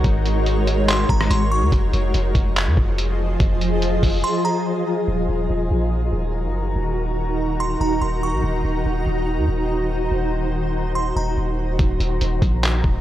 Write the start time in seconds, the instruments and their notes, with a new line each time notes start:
Already playing: ambient pad G#3 D#4 F#4 A#4 C#5
0.04 808-style bass G#1, kick, closed hi-hat
0.26 closed hi-hat
0.46 closed hi-hat
0.67 closed hi-hat
0.88 synth bell C6, clap, closed hi-hat
1.09 808-style bass G#1, synth bell A#5, kick
1.21 cross-stick
1.30 808-style bass G#1, synth bell C6, closed hi-hat
1.52 synth bell C#6
1.62 808-style bass D#2
1.72 808-style bass F1, ambient pad F3 F4 G#4 C5 D#5, kick, closed hi-hat
1.93 808-style bass F1, closed hi-hat
2.14 808-style bass F1, closed hi-hat
2.35 808-style bass F1, kick, closed hi-hat
2.56 clap, closed hi-hat
2.67 808-style bass F2
2.77 808-style bass F1, kick
2.98 closed hi-hat
3.40 808-style bass F1, kick, closed hi-hat
3.61 closed hi-hat
3.82 closed hi-hat
4.03 808-style bass F1, kick, open hi-hat
4.24 synth bell C6
4.45 synth bell A#5
5.08 808-style bass D#1, ambient pad D#3 D#4 F#4 A#4 A#5
5.29 808-style bass D#1
5.50 808-style bass D#1
5.71 808-style bass A#1
6.13 808-style bass D#1
6.44 808-style bass F#1
6.76 808-style bass D#1
7.60 synth bell C6
7.81 808-style bass D#1, synth bell A#5
8.01 808-style bass D#1, synth bell C6
8.23 synth bell C#6
8.33 808-style bass A#1
8.43 808-style bass D#1, ambient pad C5
8.64 808-style bass D#1
8.86 808-style bass D#1
9.06 808-style bass D#1
9.38 808-style bass D#2
9.48 808-style bass D#1
10.11 808-style bass D#1
10.95 synth bell C6
11.16 808-style bass D#1, synth bell A#5
11.37 808-style bass D#1
11.79 808-style bass D#1, ambient pad D#3 D#4 F#4 A#4 A#5, kick, closed hi-hat
12.00 808-style bass D#1, closed hi-hat
12.21 808-style bass D#1, closed hi-hat
12.42 808-style bass A#1, kick, closed hi-hat
12.63 clap, closed hi-hat
12.84 808-style bass D#1, kick